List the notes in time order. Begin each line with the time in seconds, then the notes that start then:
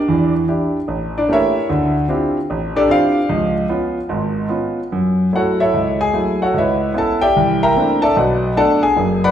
Already playing: D4 G4 A#4 D5
0.08 E2 E3
0.48 D4 E4 G4
0.88 A1
1.18 D4 D5
1.29 A3 A#3 C#4 G4 A#4
1.33 E4 C#5 E5
1.69 D2 D3
2.09 C4 D4 E4 F4 G4
2.50 A1
2.76 D4 G4 A4 D5
2.88 C4 D4 E4 F4 G4 C5 D5 F5
3.29 C#2 F3
3.69 B3 C#4 F4
4.09 G#1 G#2
4.49 B3 C#4 F4
4.92 F#2
5.33 F#3 A3 E4 F#4 A4 C#5 F#5
5.60 E4 A4 C#5 E5
5.74 C#2
6.01 G#4 G#5
6.14 F#3 A3 E4
6.42 F#4 A4 C#5 F#5
6.54 C#2
6.58 E4 B4 C#5 E5
6.94 B3 C#4 E4
6.98 A4 A5
7.21 G4 D5 E5 G5
7.36 C2 E3
7.63 A#4 E5 G5 A#5
7.76 A3 A#3 C4 D4 E4
8.02 A4 D5 E5 A5
8.17 B1 F#4 B4 D5 F#5
8.56 A3 B3 D4 A4 D5 F#5 A5
8.83 G#4 G#5
8.96 F#1 F#2
9.24 B4 D5 F#5 B5